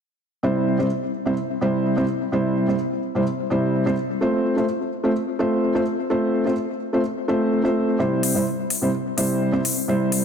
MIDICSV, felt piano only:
0, 0, Header, 1, 2, 480
1, 0, Start_track
1, 0, Key_signature, 0, "major"
1, 0, Tempo, 472441
1, 445, Time_signature, 4, 2, 24, 8
1, 10411, End_track
2, 0, Start_track
2, 0, Title_t, "Felt piano"
2, 0, Program_c, 0, 0
2, 436, Note_on_c, 0, 48, 86
2, 439, Note_on_c, 0, 55, 77
2, 443, Note_on_c, 0, 60, 78
2, 445, Note_on_c, 0, 64, 74
2, 449, Note_on_c, 0, 72, 92
2, 772, Note_off_c, 0, 48, 0
2, 773, Note_off_c, 0, 55, 0
2, 775, Note_off_c, 0, 60, 0
2, 776, Note_off_c, 0, 64, 0
2, 778, Note_off_c, 0, 72, 0
2, 796, Note_on_c, 0, 48, 68
2, 798, Note_on_c, 0, 55, 64
2, 802, Note_on_c, 0, 60, 67
2, 805, Note_on_c, 0, 64, 65
2, 808, Note_on_c, 0, 72, 77
2, 863, Note_off_c, 0, 48, 0
2, 864, Note_off_c, 0, 55, 0
2, 866, Note_off_c, 0, 60, 0
2, 868, Note_off_c, 0, 64, 0
2, 869, Note_off_c, 0, 72, 0
2, 1276, Note_on_c, 0, 48, 74
2, 1279, Note_on_c, 0, 55, 67
2, 1282, Note_on_c, 0, 60, 67
2, 1285, Note_on_c, 0, 64, 64
2, 1288, Note_on_c, 0, 72, 80
2, 1343, Note_off_c, 0, 48, 0
2, 1344, Note_off_c, 0, 55, 0
2, 1346, Note_off_c, 0, 60, 0
2, 1348, Note_off_c, 0, 64, 0
2, 1349, Note_off_c, 0, 72, 0
2, 1637, Note_on_c, 0, 48, 84
2, 1640, Note_on_c, 0, 55, 78
2, 1642, Note_on_c, 0, 60, 79
2, 1646, Note_on_c, 0, 64, 79
2, 1649, Note_on_c, 0, 72, 95
2, 1972, Note_off_c, 0, 48, 0
2, 1973, Note_off_c, 0, 55, 0
2, 1975, Note_off_c, 0, 60, 0
2, 1976, Note_off_c, 0, 64, 0
2, 1978, Note_off_c, 0, 72, 0
2, 1995, Note_on_c, 0, 48, 85
2, 1999, Note_on_c, 0, 55, 82
2, 2003, Note_on_c, 0, 60, 76
2, 2005, Note_on_c, 0, 64, 81
2, 2008, Note_on_c, 0, 72, 97
2, 2063, Note_off_c, 0, 48, 0
2, 2065, Note_off_c, 0, 55, 0
2, 2067, Note_off_c, 0, 60, 0
2, 2068, Note_off_c, 0, 64, 0
2, 2069, Note_off_c, 0, 72, 0
2, 2357, Note_on_c, 0, 48, 86
2, 2360, Note_on_c, 0, 55, 77
2, 2363, Note_on_c, 0, 60, 80
2, 2366, Note_on_c, 0, 64, 81
2, 2370, Note_on_c, 0, 72, 91
2, 2692, Note_off_c, 0, 48, 0
2, 2693, Note_off_c, 0, 55, 0
2, 2695, Note_off_c, 0, 60, 0
2, 2697, Note_off_c, 0, 64, 0
2, 2698, Note_off_c, 0, 72, 0
2, 2718, Note_on_c, 0, 48, 72
2, 2722, Note_on_c, 0, 55, 62
2, 2724, Note_on_c, 0, 60, 62
2, 2727, Note_on_c, 0, 64, 64
2, 2730, Note_on_c, 0, 72, 74
2, 2784, Note_off_c, 0, 48, 0
2, 2786, Note_off_c, 0, 55, 0
2, 2787, Note_off_c, 0, 60, 0
2, 2789, Note_off_c, 0, 64, 0
2, 2790, Note_off_c, 0, 72, 0
2, 3198, Note_on_c, 0, 48, 68
2, 3201, Note_on_c, 0, 55, 68
2, 3204, Note_on_c, 0, 60, 66
2, 3207, Note_on_c, 0, 64, 66
2, 3210, Note_on_c, 0, 72, 81
2, 3264, Note_off_c, 0, 48, 0
2, 3266, Note_off_c, 0, 55, 0
2, 3267, Note_off_c, 0, 60, 0
2, 3269, Note_off_c, 0, 64, 0
2, 3270, Note_off_c, 0, 72, 0
2, 3558, Note_on_c, 0, 48, 87
2, 3561, Note_on_c, 0, 55, 79
2, 3563, Note_on_c, 0, 60, 80
2, 3566, Note_on_c, 0, 64, 79
2, 3570, Note_on_c, 0, 72, 91
2, 3892, Note_off_c, 0, 48, 0
2, 3894, Note_off_c, 0, 55, 0
2, 3895, Note_off_c, 0, 60, 0
2, 3897, Note_off_c, 0, 64, 0
2, 3898, Note_off_c, 0, 72, 0
2, 3918, Note_on_c, 0, 48, 86
2, 3921, Note_on_c, 0, 55, 81
2, 3924, Note_on_c, 0, 60, 79
2, 3927, Note_on_c, 0, 64, 77
2, 3930, Note_on_c, 0, 72, 94
2, 3984, Note_off_c, 0, 48, 0
2, 3986, Note_off_c, 0, 55, 0
2, 3987, Note_off_c, 0, 60, 0
2, 3989, Note_off_c, 0, 64, 0
2, 3990, Note_off_c, 0, 72, 0
2, 4276, Note_on_c, 0, 57, 81
2, 4282, Note_on_c, 0, 60, 81
2, 4285, Note_on_c, 0, 65, 75
2, 4289, Note_on_c, 0, 72, 94
2, 4612, Note_off_c, 0, 57, 0
2, 4614, Note_off_c, 0, 60, 0
2, 4616, Note_off_c, 0, 65, 0
2, 4618, Note_off_c, 0, 72, 0
2, 4637, Note_on_c, 0, 57, 67
2, 4642, Note_on_c, 0, 60, 67
2, 4646, Note_on_c, 0, 65, 63
2, 4649, Note_on_c, 0, 72, 81
2, 4704, Note_off_c, 0, 57, 0
2, 4706, Note_off_c, 0, 60, 0
2, 4708, Note_off_c, 0, 65, 0
2, 4710, Note_off_c, 0, 72, 0
2, 5116, Note_on_c, 0, 57, 72
2, 5121, Note_on_c, 0, 60, 70
2, 5124, Note_on_c, 0, 65, 64
2, 5128, Note_on_c, 0, 72, 81
2, 5183, Note_off_c, 0, 57, 0
2, 5186, Note_off_c, 0, 60, 0
2, 5187, Note_off_c, 0, 65, 0
2, 5189, Note_off_c, 0, 72, 0
2, 5477, Note_on_c, 0, 57, 87
2, 5481, Note_on_c, 0, 60, 75
2, 5485, Note_on_c, 0, 65, 80
2, 5489, Note_on_c, 0, 72, 91
2, 5812, Note_off_c, 0, 57, 0
2, 5814, Note_off_c, 0, 60, 0
2, 5816, Note_off_c, 0, 65, 0
2, 5818, Note_off_c, 0, 72, 0
2, 5839, Note_on_c, 0, 57, 89
2, 5842, Note_on_c, 0, 60, 83
2, 5846, Note_on_c, 0, 65, 80
2, 5850, Note_on_c, 0, 72, 95
2, 5905, Note_off_c, 0, 57, 0
2, 5906, Note_off_c, 0, 60, 0
2, 5908, Note_off_c, 0, 65, 0
2, 5910, Note_off_c, 0, 72, 0
2, 6197, Note_on_c, 0, 57, 87
2, 6202, Note_on_c, 0, 60, 77
2, 6205, Note_on_c, 0, 65, 78
2, 6210, Note_on_c, 0, 72, 92
2, 6532, Note_off_c, 0, 57, 0
2, 6535, Note_off_c, 0, 60, 0
2, 6536, Note_off_c, 0, 65, 0
2, 6538, Note_off_c, 0, 72, 0
2, 6557, Note_on_c, 0, 57, 68
2, 6562, Note_on_c, 0, 60, 64
2, 6565, Note_on_c, 0, 65, 66
2, 6570, Note_on_c, 0, 72, 77
2, 6624, Note_off_c, 0, 57, 0
2, 6626, Note_off_c, 0, 60, 0
2, 6628, Note_off_c, 0, 65, 0
2, 6630, Note_off_c, 0, 72, 0
2, 7040, Note_on_c, 0, 57, 72
2, 7044, Note_on_c, 0, 60, 66
2, 7048, Note_on_c, 0, 65, 66
2, 7052, Note_on_c, 0, 72, 77
2, 7105, Note_off_c, 0, 57, 0
2, 7107, Note_off_c, 0, 60, 0
2, 7109, Note_off_c, 0, 65, 0
2, 7111, Note_off_c, 0, 72, 0
2, 7397, Note_on_c, 0, 57, 91
2, 7401, Note_on_c, 0, 60, 83
2, 7405, Note_on_c, 0, 65, 80
2, 7408, Note_on_c, 0, 72, 97
2, 7732, Note_off_c, 0, 57, 0
2, 7734, Note_off_c, 0, 60, 0
2, 7736, Note_off_c, 0, 65, 0
2, 7738, Note_off_c, 0, 72, 0
2, 7757, Note_on_c, 0, 57, 76
2, 7761, Note_on_c, 0, 60, 67
2, 7764, Note_on_c, 0, 65, 69
2, 7769, Note_on_c, 0, 72, 85
2, 8092, Note_off_c, 0, 57, 0
2, 8094, Note_off_c, 0, 60, 0
2, 8096, Note_off_c, 0, 65, 0
2, 8098, Note_off_c, 0, 72, 0
2, 8117, Note_on_c, 0, 48, 85
2, 8121, Note_on_c, 0, 55, 79
2, 8122, Note_on_c, 0, 60, 77
2, 8127, Note_on_c, 0, 64, 81
2, 8129, Note_on_c, 0, 72, 91
2, 8452, Note_off_c, 0, 48, 0
2, 8454, Note_off_c, 0, 55, 0
2, 8455, Note_off_c, 0, 60, 0
2, 8457, Note_off_c, 0, 64, 0
2, 8458, Note_off_c, 0, 72, 0
2, 8479, Note_on_c, 0, 48, 71
2, 8482, Note_on_c, 0, 55, 63
2, 8485, Note_on_c, 0, 60, 63
2, 8489, Note_on_c, 0, 64, 67
2, 8491, Note_on_c, 0, 72, 79
2, 8545, Note_off_c, 0, 48, 0
2, 8546, Note_off_c, 0, 55, 0
2, 8548, Note_off_c, 0, 60, 0
2, 8549, Note_off_c, 0, 64, 0
2, 8551, Note_off_c, 0, 72, 0
2, 8956, Note_on_c, 0, 48, 72
2, 8959, Note_on_c, 0, 55, 63
2, 8962, Note_on_c, 0, 60, 67
2, 8966, Note_on_c, 0, 64, 66
2, 8969, Note_on_c, 0, 72, 82
2, 9023, Note_off_c, 0, 48, 0
2, 9025, Note_off_c, 0, 55, 0
2, 9026, Note_off_c, 0, 60, 0
2, 9028, Note_off_c, 0, 64, 0
2, 9030, Note_off_c, 0, 72, 0
2, 9318, Note_on_c, 0, 48, 85
2, 9322, Note_on_c, 0, 55, 79
2, 9324, Note_on_c, 0, 60, 75
2, 9327, Note_on_c, 0, 64, 75
2, 9331, Note_on_c, 0, 72, 96
2, 9652, Note_off_c, 0, 48, 0
2, 9654, Note_off_c, 0, 55, 0
2, 9655, Note_off_c, 0, 60, 0
2, 9657, Note_off_c, 0, 64, 0
2, 9659, Note_off_c, 0, 72, 0
2, 9675, Note_on_c, 0, 48, 88
2, 9678, Note_on_c, 0, 55, 78
2, 9682, Note_on_c, 0, 60, 80
2, 9684, Note_on_c, 0, 64, 81
2, 9687, Note_on_c, 0, 72, 91
2, 9743, Note_off_c, 0, 48, 0
2, 9744, Note_off_c, 0, 55, 0
2, 9746, Note_off_c, 0, 60, 0
2, 9747, Note_off_c, 0, 64, 0
2, 9749, Note_off_c, 0, 72, 0
2, 10037, Note_on_c, 0, 48, 87
2, 10040, Note_on_c, 0, 55, 77
2, 10043, Note_on_c, 0, 60, 78
2, 10047, Note_on_c, 0, 64, 76
2, 10050, Note_on_c, 0, 72, 95
2, 10372, Note_off_c, 0, 48, 0
2, 10374, Note_off_c, 0, 55, 0
2, 10375, Note_off_c, 0, 60, 0
2, 10377, Note_off_c, 0, 64, 0
2, 10379, Note_off_c, 0, 72, 0
2, 10411, End_track
0, 0, End_of_file